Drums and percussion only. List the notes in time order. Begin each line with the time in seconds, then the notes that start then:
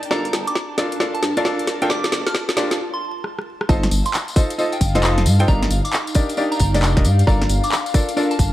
0.03 closed hi-hat
0.11 kick, snare
0.25 open hi-hat
0.33 snare, open hi-hat
0.47 closed hi-hat
0.55 kick, snare
0.78 snare, open hi-hat
0.92 closed hi-hat
1.00 kick, snare
1.15 closed hi-hat
1.23 snare, open hi-hat
1.37 closed hi-hat
1.45 kick, snare
1.59 closed hi-hat
1.67 snare, open hi-hat
1.82 closed hi-hat
1.90 kick, snare
2.04 snare, closed hi-hat
2.12 snare, open hi-hat
2.27 snare, open hi-hat
2.35 kick, snare
2.49 snare, closed hi-hat
2.57 snare, open hi-hat
2.71 snare, closed hi-hat
3.24 cross-stick
3.39 cross-stick
3.61 cross-stick
3.69 kick, tambourine
3.83 snare, open hi-hat
3.91 open hi-hat, tambourine
4.05 closed hi-hat, tambourine
4.14 clap, tambourine
4.28 closed hi-hat, tambourine
4.36 kick, open hi-hat, tambourine
4.50 closed hi-hat, tambourine
4.59 tambourine
4.72 closed hi-hat, tambourine
4.81 kick, open hi-hat, tambourine
4.95 snare, closed hi-hat, tambourine
5.02 clap, tambourine
5.18 snare, closed hi-hat
5.26 open hi-hat, tambourine
5.40 closed hi-hat
5.48 kick, tambourine
5.62 snare, closed hi-hat
5.70 open hi-hat, tambourine
5.85 open hi-hat, tambourine
5.92 clap, tambourine
6.07 closed hi-hat, tambourine
6.15 kick, open hi-hat, tambourine
6.29 closed hi-hat, tambourine
6.37 tambourine
6.52 closed hi-hat, tambourine
6.59 kick, open hi-hat, tambourine
6.74 snare, closed hi-hat, tambourine
6.82 clap, tambourine
6.97 kick, snare, closed hi-hat
7.04 open hi-hat, tambourine
7.19 closed hi-hat, tambourine
7.27 kick, tambourine
7.42 snare, open hi-hat
7.49 open hi-hat, tambourine
7.63 closed hi-hat, tambourine
7.72 clap, tambourine
7.86 closed hi-hat, tambourine
7.94 kick, open hi-hat, tambourine
8.09 closed hi-hat, tambourine
8.17 tambourine
8.31 closed hi-hat, tambourine
8.39 kick, open hi-hat, tambourine